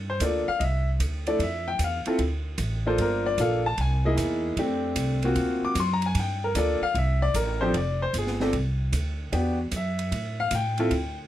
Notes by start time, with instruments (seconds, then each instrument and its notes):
Already playing: upright bass G2
0.10 grand piano C5
0.20 upright bass D2, grand piano A#3 D4 F4 A4, kick, hi-hat pedal, ride
0.24 grand piano D5
0.48 grand piano F5, muted upright bass stroke
0.59 upright bass C2, grand piano D#5, kick, ride
0.64 grand piano E5
1.00 upright bass D2, kick, hi-hat pedal, ride
1.27 grand piano A3 D4 E4 A4 D5, ride
1.39 upright bass F2, kick, ride
1.43 grand piano E5
1.68 grand piano G5
1.79 upright bass E2, kick, hi-hat pedal, ride
1.84 grand piano F5
2.05 grand piano C4 E4 F4 A4, muted upright bass stroke, ride
2.19 upright bass D2, kick, ride
2.58 upright bass A1, kick, hi-hat pedal, ride
2.86 grand piano A#3 D4 F4 A4 C5
2.98 upright bass G1, grand piano A#4, kick, ride
3.26 grand piano D5
3.38 upright bass A#1, grand piano A#3 D4 F4 A4 F5, kick, hi-hat pedal, ride
3.66 grand piano A5
3.78 upright bass C2, grand piano G#5, kick, ride
4.05 grand piano A#3 D#4 E4 G#4 D#5
4.17 upright bass E2, kick, hi-hat pedal, ride
4.57 upright bass F2, grand piano A3 C4 D4 G4, kick, ride
4.96 upright bass C2, kick, hi-hat pedal, ride
5.22 grand piano A#3 C4 F4 F#4, ride
5.35 upright bass D2, kick, ride
5.62 grand piano D6, muted upright bass stroke
5.75 upright bass F#2, kick, hi-hat pedal, ride
5.80 grand piano C6
5.93 grand piano A#5
6.02 ride
6.06 grand piano G#5
6.15 upright bass G2, kick, ride
6.19 grand piano G5
6.44 grand piano A#4
6.55 upright bass D2, grand piano A#3 D4 F4 A4 D5, kick, hi-hat pedal, ride
6.81 grand piano F5, muted upright bass stroke
6.94 upright bass C2, grand piano E5, kick, ride
7.22 grand piano D5
7.34 upright bass A1, grand piano A#4, kick, hi-hat pedal, ride
7.61 grand piano F3 C4 D4 G4 A4 C5
7.74 upright bass F1, grand piano D5, kick, ride
8.02 grand piano C5
8.13 upright bass G1, kick, hi-hat pedal, ride
8.18 grand piano G#4
8.27 snare
8.40 grand piano C4 D4 G4 A4, snare
8.53 upright bass C2, kick, ride
8.92 upright bass D2, kick, hi-hat pedal, ride
9.32 upright bass E2, grand piano B3 D4 F#4 G4, kick, ride
9.72 upright bass F#2, kick, hi-hat pedal, ride
9.76 grand piano E5
9.99 ride
10.12 upright bass A2, kick, ride
10.40 grand piano F5
10.51 upright bass A2, grand piano G5, kick, hi-hat pedal, ride
10.78 grand piano C4 E4 F4 A4, ride
10.91 upright bass D2, kick, ride